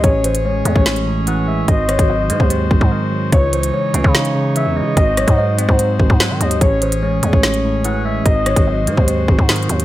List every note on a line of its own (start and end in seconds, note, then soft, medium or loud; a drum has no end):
0.04 0.63 A1 loud
0.04 1.06 A2 medium
0.04 1.66 C#4 medium
0.04 1.66 G#4 medium
0.04 1.66 C#5 medium
0.04 0.23 C#5 loud
0.04 kick loud
0.04 closed hi-hat medium
0.24 1.26 E3 medium
0.24 0.43 C5 medium
0.24 closed hi-hat loud
0.35 closed hi-hat medium
0.45 1.46 G#3 medium
0.45 0.74 C#5 medium
0.65 0.75 E2 loud
0.65 1.68 A3 loud
0.65 closed hi-hat medium
0.76 1.64 A1 loud
0.76 1.64 C#5 medium
0.76 kick loud
0.86 1.68 C#4 medium
0.86 snare loud
0.86 closed hi-hat medium
0.96 closed hi-hat soft
1.07 1.68 A2 medium
1.27 1.68 E3 loud
1.27 1.47 F#5 medium
1.27 closed hi-hat medium
1.47 1.68 G#3 medium
1.47 1.67 E5 medium
1.68 1.98 G#1 loud
1.68 2.70 G#2 medium
1.68 3.31 G#3 medium
1.68 3.31 F#4 medium
1.68 3.31 C5 medium
1.68 1.87 D#5 loud
1.68 2.46 D#5 loud
1.68 kick loud
1.68 closed hi-hat medium
1.89 2.90 D#3 medium
1.89 2.08 C#5 medium
1.89 cross-stick medium
1.89 closed hi-hat medium
1.99 2.31 G#1 loud
1.99 kick loud
1.99 closed hi-hat medium
2.09 3.11 F#3 medium
2.09 2.38 D#5 medium
2.30 2.40 G#2 loud
2.30 3.33 G#3 loud
2.30 closed hi-hat medium
2.40 2.70 D#2 loud
2.40 3.28 C5 medium
2.40 kick loud
2.50 3.32 C4 medium
2.50 closed hi-hat medium
2.71 2.81 G#1 loud
2.71 3.33 G#2 medium
2.71 kick medium
2.81 2.91 G#2 loud
2.81 kick medium
2.91 3.32 D#3 medium
3.12 3.32 F#3 medium
3.32 3.72 C#2 loud
3.32 4.34 C#3 medium
3.32 4.95 E3 medium
3.32 4.95 D#4 medium
3.32 4.95 C#5 medium
3.32 3.52 C#5 loud
3.32 kick loud
3.32 closed hi-hat medium
3.53 4.55 E3 medium
3.53 3.72 C5 medium
3.53 closed hi-hat medium
3.63 closed hi-hat medium
3.74 4.75 G#3 medium
3.74 4.03 C#5 medium
3.94 4.04 C#2 loud
3.94 4.97 C#4 loud
3.94 closed hi-hat medium
4.04 4.68 C#3 loud
4.04 4.93 C#5 medium
4.04 kick loud
4.15 4.97 D#4 medium
4.15 snare loud
4.15 closed hi-hat medium
4.25 closed hi-hat soft
4.35 4.97 C#3 medium
4.56 4.97 E3 medium
4.56 4.75 E5 medium
4.56 closed hi-hat medium
4.66 4.83 E2 loud
4.76 4.97 G#3 medium
4.76 4.96 D#5 medium
4.81 4.96 C#3 loud
4.97 5.26 G#1 loud
4.97 5.98 G#2 medium
4.97 6.60 G#3 medium
4.97 6.60 F#4 medium
4.97 6.60 C5 medium
4.97 5.75 D#5 loud
4.97 5.16 D#5 loud
4.97 kick loud
4.97 closed hi-hat medium
5.17 6.19 F#3 medium
5.17 5.37 C#5 medium
5.17 cross-stick loud
5.17 closed hi-hat loud
5.28 5.67 G#2 loud
5.28 kick loud
5.28 closed hi-hat medium
5.38 6.40 G#3 medium
5.38 5.67 D#5 medium
5.58 6.61 C4 loud
5.58 closed hi-hat medium
5.69 5.98 G#2 loud
5.69 6.57 C5 medium
5.69 kick loud
5.79 6.61 D#4 medium
5.79 closed hi-hat medium
6.00 6.09 G#1 loud
6.00 6.61 G#2 medium
6.00 kick medium
6.10 6.32 G#2 loud
6.10 kick loud
6.20 6.61 F#3 loud
6.20 snare loud
6.20 closed hi-hat medium
6.30 6.40 D#3 loud
6.41 6.60 D#2 loud
6.41 6.61 G#3 medium
6.41 6.60 D#5 medium
6.41 closed hi-hat medium
6.51 closed hi-hat medium
6.61 7.20 A1 loud
6.61 7.63 A2 medium
6.61 8.24 C#4 medium
6.61 8.24 G#4 medium
6.61 8.24 C#5 medium
6.61 6.81 C#5 loud
6.61 kick loud
6.61 closed hi-hat medium
6.82 7.84 E3 medium
6.82 7.01 C5 medium
6.82 closed hi-hat medium
6.92 closed hi-hat medium
7.02 8.04 G#3 medium
7.02 7.31 C#5 medium
7.23 7.32 E2 loud
7.23 8.26 A3 medium
7.23 closed hi-hat medium
7.33 8.22 A1 loud
7.33 8.22 C#5 medium
7.33 kick medium
7.43 8.26 C#4 medium
7.43 snare loud
7.43 closed hi-hat medium
7.54 closed hi-hat soft
7.64 8.26 A2 medium
7.84 8.26 E3 loud
7.84 8.04 F#5 medium
7.84 closed hi-hat medium
8.05 8.26 G#3 medium
8.05 8.25 E5 medium
8.25 8.55 G#1 loud
8.25 9.27 G#2 loud
8.25 9.85 G#3 medium
8.25 9.85 F#4 medium
8.25 9.85 C5 medium
8.25 9.04 D#5 loud
8.25 8.45 D#5 loud
8.25 kick loud
8.25 closed hi-hat medium
8.46 9.48 D#3 medium
8.46 8.65 C#5 medium
8.46 cross-stick loud
8.46 closed hi-hat medium
8.56 8.89 G#1 loud
8.56 kick loud
8.56 closed hi-hat medium
8.67 9.68 F#3 medium
8.67 8.96 D#5 medium
8.87 8.97 G#2 loud
8.87 9.85 G#3 loud
8.87 closed hi-hat medium
8.97 9.27 D#2 loud
8.97 9.85 C5 medium
8.97 kick loud
9.08 9.85 C4 medium
9.08 closed hi-hat medium
9.28 9.38 G#1 loud
9.28 9.85 G#2 medium
9.28 kick medium
9.39 9.68 G#2 loud
9.39 kick loud
9.49 9.85 D#3 loud
9.49 snare loud
9.49 closed hi-hat medium
9.56 closed hi-hat medium
9.63 closed hi-hat soft
9.69 9.85 D#2 loud
9.69 9.85 F#3 medium
9.69 closed hi-hat medium
9.80 closed hi-hat medium